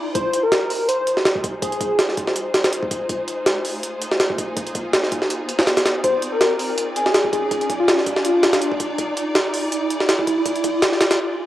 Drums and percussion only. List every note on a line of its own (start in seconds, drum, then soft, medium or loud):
0.15 kick loud
0.15 closed hi-hat medium
0.33 closed hi-hat medium
0.52 snare loud
0.52 closed hi-hat medium
0.70 open hi-hat medium
0.89 closed hi-hat medium
1.07 closed hi-hat medium
1.17 snare soft
1.25 snare loud
1.25 closed hi-hat medium
1.35 kick medium
1.44 kick medium
1.44 closed hi-hat medium
1.62 kick loud
1.62 closed hi-hat medium
1.72 closed hi-hat soft
1.81 kick medium
1.81 closed hi-hat medium
1.99 snare loud
1.99 closed hi-hat medium
2.09 snare soft
2.17 kick medium
2.17 closed hi-hat medium
2.27 snare soft
2.36 closed hi-hat medium
2.54 snare loud
2.54 closed hi-hat medium
2.64 snare loud
2.64 closed hi-hat medium
2.73 closed hi-hat medium
2.83 kick medium
2.91 kick medium
2.91 closed hi-hat medium
3.09 kick loud
3.09 closed hi-hat medium
3.28 closed hi-hat medium
3.46 snare loud
3.46 closed hi-hat medium
3.65 open hi-hat medium
3.83 closed hi-hat medium
4.02 closed hi-hat medium
4.12 snare soft
4.20 snare loud
4.20 closed hi-hat medium
4.30 kick medium
4.38 kick medium
4.38 closed hi-hat medium
4.57 kick loud
4.57 closed hi-hat medium
4.67 closed hi-hat soft
4.75 kick medium
4.75 closed hi-hat medium
4.93 snare loud
4.93 closed hi-hat medium
5.03 snare soft
5.12 kick medium
5.12 closed hi-hat medium
5.22 snare soft
5.30 closed hi-hat medium
5.49 closed hi-hat medium
5.59 snare loud
5.67 snare loud
5.67 closed hi-hat medium
5.77 snare loud
5.77 closed hi-hat medium
5.86 snare loud
5.86 closed hi-hat medium
6.04 kick loud
6.04 closed hi-hat medium
6.22 closed hi-hat medium
6.41 snare loud
6.41 closed hi-hat medium
6.59 open hi-hat medium
6.78 closed hi-hat medium
6.96 closed hi-hat medium
7.06 snare soft
7.14 snare loud
7.14 closed hi-hat medium
7.24 kick medium
7.33 kick medium
7.33 closed hi-hat medium
7.51 kick loud
7.51 closed hi-hat medium
7.61 closed hi-hat soft
7.70 kick medium
7.70 closed hi-hat medium
7.88 snare loud
7.88 closed hi-hat medium
7.98 snare soft
8.06 kick medium
8.06 closed hi-hat medium
8.16 snare soft
8.25 closed hi-hat medium
8.43 snare loud
8.43 closed hi-hat medium
8.53 snare loud
8.53 closed hi-hat medium
8.62 closed hi-hat medium
8.72 kick loud
8.80 kick loud
8.80 closed hi-hat medium
8.98 kick loud
8.98 closed hi-hat medium
9.17 closed hi-hat medium
9.35 snare loud
9.35 closed hi-hat medium
9.54 open hi-hat medium
9.72 closed hi-hat medium
9.90 closed hi-hat medium
10.00 snare soft
10.09 snare loud
10.09 closed hi-hat medium
10.19 kick medium
10.27 kick medium
10.27 closed hi-hat medium
10.46 kick loud
10.46 closed hi-hat medium
10.56 closed hi-hat soft
10.64 kick medium
10.64 closed hi-hat medium
10.82 snare loud
10.82 closed hi-hat medium
10.92 snare soft
11.01 snare loud
11.01 closed hi-hat medium
11.11 snare loud
11.11 closed hi-hat medium